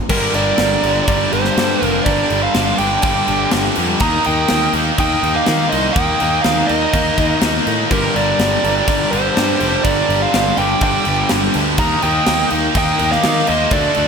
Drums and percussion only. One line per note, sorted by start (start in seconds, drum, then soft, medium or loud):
0.09 kick loud
0.09 crash loud
0.09 crash medium
0.34 crash medium
0.58 snare loud
0.58 crash medium
0.84 crash medium
1.08 kick loud
1.08 crash medium
1.32 crash medium
1.44 snare soft
1.57 snare loud
1.57 crash medium
1.83 crash medium
2.06 kick loud
2.06 crash medium
2.30 crash medium
2.54 snare loud
2.54 crash medium
2.78 crash medium
3.02 kick loud
3.02 crash medium
3.28 crash medium
3.51 snare loud
3.51 crash medium
3.76 crash medium
4.00 kick loud
4.00 crash medium
4.24 crash medium
4.48 snare loud
4.48 crash medium
4.73 crash medium
4.98 kick loud
4.98 crash medium
5.23 crash medium
5.46 snare loud
5.46 crash medium
5.72 crash medium
5.96 kick loud
5.96 crash medium
6.20 crash medium
6.44 snare loud
6.44 crash medium
6.69 crash medium
6.94 kick loud
6.94 crash medium
7.18 kick medium
7.18 crash medium
7.41 snare loud
7.41 crash medium
7.67 crash medium
7.91 kick loud
7.91 crash medium
8.16 crash medium
8.39 snare loud
8.39 crash medium
8.64 crash medium
8.88 kick loud
8.88 crash medium
9.13 crash medium
9.37 snare loud
9.37 crash medium
9.60 crash medium
9.85 kick loud
9.85 crash medium
10.10 crash medium
10.34 snare loud
10.34 crash medium
10.57 crash medium
10.81 kick loud
10.81 crash medium
11.05 crash medium
11.29 snare loud
11.29 crash medium
11.54 crash medium
11.78 kick loud
11.78 crash medium
12.02 crash medium
12.26 snare loud
12.26 crash medium
12.50 crash medium
12.75 kick loud
12.75 crash medium
12.99 crash medium
13.12 snare soft
13.23 snare loud
13.23 crash medium
13.47 crash medium
13.71 kick loud
13.71 crash medium
13.94 crash medium